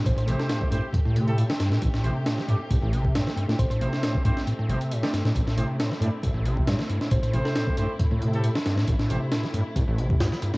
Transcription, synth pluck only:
X:1
M:4/4
L:1/16
Q:"Swing 16ths" 1/4=136
K:Am
V:1 name="Synth pluck"
c c z A3 z8 z2 | z16 | c c z12 z2 | z16 |
c c z A3 z8 z2 | z16 |]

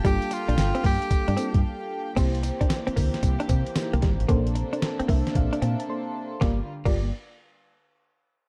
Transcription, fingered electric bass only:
X:1
M:4/4
L:1/16
Q:"Swing 16ths" 1/4=113
K:Gdor
V:1 name="Fingered electric bass" clef=bass
G,,, z2 B,,, G,,, z G,, z2 G,, z G,, z4 | C,,3 z3 D,, z C,, z C, z2 C,, _A,,, =A,,, | B,,,3 z3 C,, z B,,, z B,, z4 z | G,,, z2 G,,,2 z8 z3 |]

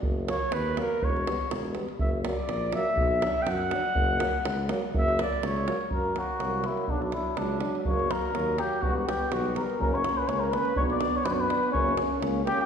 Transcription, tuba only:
X:1
M:2/4
L:1/8
Q:"Swing 16ths" 1/4=123
K:none
V:1 name="Tuba" clef=bass
^F,,,2 ^D,,2 | E,,,2 E,,,2 | ^F,,,2 ^A,,,2 | B,,,2 ^F,,2 |
^F,,,2 ^C,,2 | ^F,,,2 ^C,,2 | ^F,,2 ^B,,,2 | B,,,2 ^C,,2 |
^F,,,2 ^D,,2 | E,,,2 B,,,2 | ^F,,,2 ^C,,2 | B,,,2 ^F,,2 |
^F,,,2 ^C,,2 |]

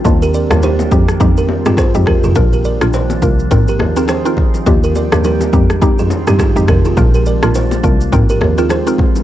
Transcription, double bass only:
X:1
M:4/4
L:1/16
Q:"Swing 16ths" 1/4=104
K:Eb
V:1 name="Double bass" clef=bass
E,,3 E,,3 F,,2 F,,3 G,,2 F,,2 F,,, | B,,,3 B,,,3 C,,2 A,,,2 E,,3 z3 | E,,3 E,,3 F,,2 z F,, z G,, z F,, F,,, z | B,,,3 B,,,3 C,,2 A,,,2 E,,3 z3 |]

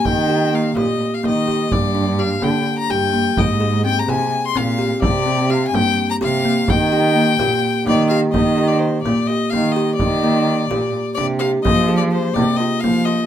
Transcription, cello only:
X:1
M:7/8
L:1/8
Q:1/4=127
K:Eb
V:1 name="Cello" clef=bass
E,3 B,, z E,2 | G,,3 D, z G,,2 | A,,3 C, z B,,2 | C,3 G,, z C,2 |
E,3 B,, z E,2 | E,3 B,, z E,2 | E,3 B,, z C,2 | F,3 C, z F,2 |]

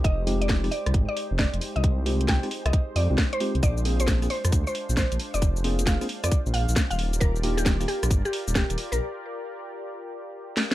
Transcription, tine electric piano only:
X:1
M:4/4
L:1/16
Q:"Swing 16ths" 1/4=134
K:Fdor
V:1 name="Tine electric piano"
z2 [A,CEFG]3 [A,CEFG] z8 z2 | z2 [A,CEFG]3 [A,CEFG] z4 z [A,CEFG] z2 [A,CEFG] z | z2 [B,CDFA]3 [B,CDFA] z8 z2 | z2 [B,CDFA]3 [B,CDFA] z8 z2 |
z2 [B,DEFG]3 [B,DEFG] z8 z2 | z16 |]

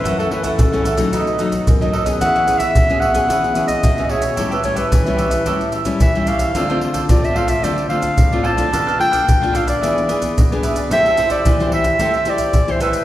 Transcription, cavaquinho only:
X:1
M:4/4
L:1/16
Q:1/4=110
K:Am
V:1 name="Cavaquinho"
[EA^c^f] [EAcf] [EAcf] [EAcf] z [Acf] [EAcf] [Acf] [^DAB^d]2 [DABd]3 [ABd] [DABd] [ABd] | [E^G^ce] [EGce] [EGce] [EGce] z [Gce] [EGce] [Gce] [EGce]2 [EGce]3 [Gce] [EGce] [Gce] | [GA^ce] [GAce] [GAce] [GAce] z [Ace] [GAce] [Ace] [GAce]2 [GAce]3 [Ace] [GAce] [Ace] | [FAcd] [FAcd] [FAcd] [FAcd] z [Acd] [FAcd] [Acd] [FAcd]2 [FAcd]3 [Acd] [FAcd] [Acd] |
[DABf] [DABf] [DABf] [DABf] z [ABf] [DABf] [ABf] [E^GBd]2 [EGBd]3 [GBd] [EGBd] [GBd] | [Aceg] [Aceg] [Aceg] [Aceg] z [ceg] [Aceg] [eg] [Aceg]2 [Aceg]3 [ceg] [Aceg] [ceg] |]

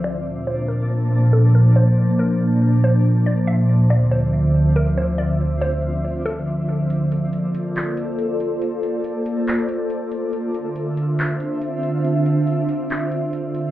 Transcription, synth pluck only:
X:1
M:4/4
L:1/8
Q:1/4=140
K:Bblyd
V:1 name="Synth pluck"
d2 c B z2 A B | c2 B3 c2 d | e2 d c z2 B c | d2 c3 A z2 |
z8 | z8 | z8 | z8 |]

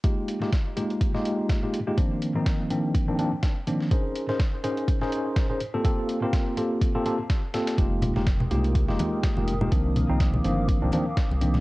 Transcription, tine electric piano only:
X:1
M:4/4
L:1/16
Q:"Swing 16ths" 1/4=124
K:Fdor
V:1 name="Tine electric piano"
[A,B,EFG]3 [A,B,EFG] z2 [A,B,EFG]3 [A,B,EFG]4 [A,B,EFG] z [A,B,EFG] | [E,F,B,CD]3 [E,F,B,CE]3 [E,F,B,CD]3 [E,F,B,CD] [E,F,B,CD] z3 [E,F,B,CD]2 | [_DEABc]3 [DEABc] z2 [DEABc]3 [DEABc]4 [DEABc] z [B,CFG=A] | [B,CFG=A]3 [B,CFGB]3 [B,CFGA]3 [B,CFGA] [B,CFGA] z3 [B,CFGA]2 |
[A,B,EFG]3 [A,B,EFG] z2 [A,B,EFG]3 [A,B,EFG]4 [A,B,EFG] z [A,B,EFG] | [E,F,B,CD]3 [E,F,B,CE]3 [E,F,B,CD]3 [E,F,B,CD] [E,F,B,CD] z3 [E,F,B,CD]2 |]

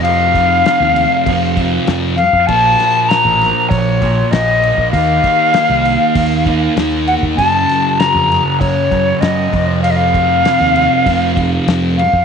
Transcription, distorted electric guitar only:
X:1
M:4/4
L:1/8
Q:1/4=98
K:none
V:1 name="Distorted electric guitar" clef=bass
[F,,C,F,]4 [F,,C,F,] [F,,C,F,]2 z | [_B,,F,_B,]4- [B,,F,B,] [B,,F,B,] [B,,F,B,]2 | [_E,_B,_E]4- [E,B,E] [E,B,E] [E,B,E]2 | [_G,,_D,_G,]4- [G,,D,G,] [G,,D,G,] [G,,D,G,] [F,,C,F,]- |
[F,,C,F,]4 [F,,C,F,] [F,,C,F,]2 z |]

